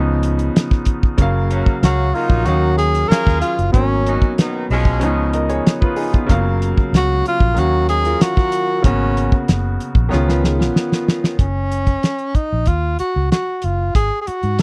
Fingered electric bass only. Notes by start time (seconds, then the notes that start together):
Already playing: C#2
1.19 F#1
1.83 C#2
2.30 A#1
2.47 D#2
3.10 muted fingered electric bass stroke
3.27 D#2
3.59 F#1
3.74 G#1
4.70 B1
5.02 C#2
6.30 F#1
6.93 C#2
7.41 A#1
7.57 D#2
8.85 G#1
9.49 F#1
9.95 A#1
10.13 C#2
11.39 F#1
12.35 muted fingered electric bass stroke
12.53 A#1
12.68 D#2
13.00 muted fingered electric bass stroke
13.16 C#2
13.64 F#1
13.95 G#1
14.28 muted fingered electric bass stroke
14.43 G#2